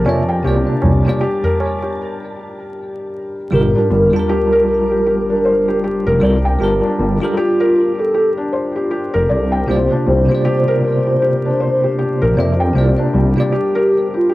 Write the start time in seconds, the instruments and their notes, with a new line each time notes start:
Already playing: felt piano D4 G4 A#4 C5, synth texture A5
0.04 detuned saw bass F2, tine electric piano C3 A#3 F4, felt piano D5, tabla na
0.09 tine electric piano E5
0.28 felt piano G5, tabla na
0.43 detuned saw bass C2, tine electric piano C3 A#3 F4, felt piano G4, tabla na
0.47 tine electric piano D5
0.67 felt piano D4
0.82 detuned saw bass C2, felt piano G3, tabla na, tabla ge
1.05 tine electric piano C3 A#3 F4, felt piano G4, tabla na
1.09 tine electric piano D5
1.21 felt piano G4, tabla na
1.43 felt piano A#4, tabla ge
1.59 felt piano A#4, tabla na
1.82 felt piano G4, tabla na
3.51 detuned saw bass G1, tine electric piano G3 F4 G4, felt piano G4, soft synth lead A#4, sub drop
3.55 tine electric piano A#4
3.75 felt piano D4
3.90 detuned saw bass G1, felt piano G3, soft synth lead A#4
4.10 tine electric piano G3 F4, felt piano G4
4.16 tine electric piano A#4 A5
4.29 felt piano G4
4.52 felt piano A#4
4.68 felt piano A#4, soft synth lead A#4
4.91 felt piano G4
5.06 felt piano G4
5.29 felt piano D4, soft synth lead A#4
5.45 felt piano C5
5.68 felt piano G4
5.84 felt piano G4
6.06 detuned saw bass F1, felt piano A#4
6.20 detuned saw bass C2, tine electric piano G3 F4 A4, felt piano D5
6.25 tine electric piano A#4
6.45 felt piano G5
6.59 detuned saw bass G1, tine electric piano G3 F4 A5, felt piano G4
6.63 tine electric piano A#4
6.83 felt piano D4
6.99 detuned saw bass G1, felt piano G3
7.20 tine electric piano G3 F4 A4, felt piano G4
7.25 tine electric piano A#4
7.37 soft synth lead F4, felt piano G4
7.60 felt piano A#4
7.76 felt piano A#4
7.99 felt piano G4, soft synth lead A4
8.14 felt piano G4
8.37 felt piano D4
8.53 felt piano C5
8.76 felt piano G4
8.91 felt piano G4
9.14 detuned saw bass F1, felt piano A#4
9.29 detuned saw bass C2, felt piano D5
9.52 felt piano G5
9.66 detuned saw bass C2, tine electric piano C3 A#3 F4, felt piano G4, soft synth lead C5
9.71 tine electric piano D5
9.91 felt piano D4
10.06 detuned saw bass C2, felt piano G3, soft synth lead C5
10.26 tine electric piano C3 A#3, felt piano G4
10.32 tine electric piano F4 D5
10.45 felt piano G4
10.68 felt piano A#4
10.84 felt piano A#4, soft synth lead C5
11.07 felt piano G4
11.22 felt piano G4
11.45 felt piano D4, soft synth lead C5
11.60 felt piano C5
11.84 felt piano G4
11.99 felt piano G4
12.22 detuned saw bass A#1, felt piano A#4
12.35 detuned saw bass F2, tine electric piano C3 A#3 F4, felt piano D5
12.40 tine electric piano E5
12.60 felt piano G5
12.73 detuned saw bass C2, tine electric piano C3 A#3 F4, felt piano G4
12.78 tine electric piano D5
12.98 felt piano D4
13.14 detuned saw bass C2, felt piano G3
13.36 tine electric piano C3 A#3 F4, felt piano G4
13.40 tine electric piano D5
13.52 felt piano G4, soft synth lead G4
13.75 felt piano A#4
13.91 felt piano A#4
14.14 soft synth lead F4, felt piano G4
14.29 felt piano G4